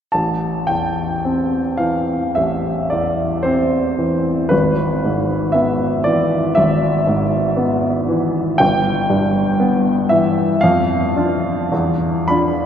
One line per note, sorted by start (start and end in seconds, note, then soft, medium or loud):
0.12 2.34 A1 soft
0.12 0.68 A5 medium
0.67 1.58 E2 soft
0.67 1.80 G5 medium
1.25 2.15 C4 soft
1.77 2.70 E3 soft
1.77 2.36 F5 medium
2.35 4.48 A1 soft
2.35 2.92 E5 medium
2.90 3.77 E2 soft
2.90 3.45 D5 soft
3.43 4.30 C4 soft
3.43 4.50 C5 medium
3.98 4.52 E3 soft
4.49 6.54 G#1 soft
4.49 5.54 B4 medium
5.05 5.86 G#2 soft
5.52 6.37 B3 soft
5.52 6.05 E5 medium
6.04 6.88 E3 soft
6.04 6.57 D5 medium
6.55 8.57 G#1 soft
6.55 8.59 E5 medium
7.07 7.89 G#2 soft
7.57 8.40 B3 soft
8.09 8.60 E3 soft
8.58 10.59 G1 soft
8.58 10.10 G5 medium
9.10 9.91 G2 soft
9.60 10.42 B3 soft
10.09 10.63 E3 soft
10.09 10.62 E5 medium
10.61 11.68 F2 medium
10.61 12.28 F5 medium
11.16 11.67 D4 soft
11.16 11.68 F4 soft
11.72 12.66 E2 soft
12.28 12.66 D4 soft
12.28 12.66 F4 soft
12.28 12.66 B5 medium